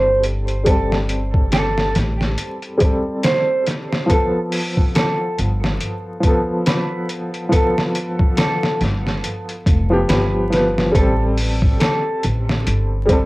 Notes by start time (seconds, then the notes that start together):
Already playing: G1 G3 C4 A4 C5
0.23 closed hi-hat
0.48 closed hi-hat
0.64 G3 C4 A4, kick, closed hi-hat
0.70 A4
0.92 snare
1.09 closed hi-hat
1.34 kick
1.52 A4, snare, closed hi-hat
1.78 snare
1.95 A1, snare, closed hi-hat
2.21 snare
2.38 closed hi-hat
2.62 closed hi-hat
2.78 G3 C4, kick, closed hi-hat
2.84 A4
3.23 C5, snare, closed hi-hat
3.67 snare, closed hi-hat
3.92 snare
4.06 F3 B3 A4, kick, closed hi-hat
4.13 A4
4.52 open hi-hat
4.77 kick
4.95 A4, snare, closed hi-hat
5.38 G1, closed hi-hat
5.64 snare
5.81 closed hi-hat
6.20 F3 B3, kick, closed hi-hat
6.27 A4
6.66 B4, snare, closed hi-hat
7.09 closed hi-hat
7.34 closed hi-hat
7.49 F3 B3 A4, kick, closed hi-hat
7.55 A4
7.78 snare
7.95 closed hi-hat
8.19 kick
8.37 A4, snare, closed hi-hat
8.63 snare
8.81 G1, snare, closed hi-hat
9.07 snare
9.24 closed hi-hat
9.49 closed hi-hat
9.66 F1, kick, closed hi-hat
9.90 F3 B3 G4
10.09 G1 B4, snare, closed hi-hat
10.50 F3 B3 B4, snare, closed hi-hat
10.78 snare
10.92 A1 G3 C4 A4, kick, closed hi-hat
10.98 A4
11.37 open hi-hat
11.62 kick
11.80 A4, snare, closed hi-hat
12.23 A1, closed hi-hat
12.49 snare
12.67 G1, closed hi-hat
13.06 G3 C4, kick, closed hi-hat
13.12 A4